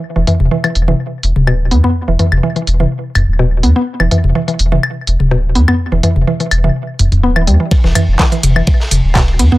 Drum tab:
RD |----------------|----------------|----------------|----------------|
HH |--o--oo---o---o-|--o--oo---o---o-|--o--oo---o---o-|--o--oo---oo--o-|
CL |-----x------x---|---x------x-----|-x------x------x|------x------x--|
CP |----------------|----------------|----------------|----------------|
SD |----------------|----------------|----------------|----------------|
T1 |---o---o---o----|---o---o--------|---o---o---o----|---o---o--------|
T2 |--o------------o|--o-------o-----|--o------------o|--o-------oo----|
BD |----------------|----------------|----------------|----------------|

RD |x-x-x-x-x-x-xxx-|
HH |--o--oo---o---o-|
CL |--x----x----x---|
CP |----x-------x---|
SD |-o--o----o--o---|
T1 |------o---o-----|
T2 |--o------------o|
BD |o---o---o---o---|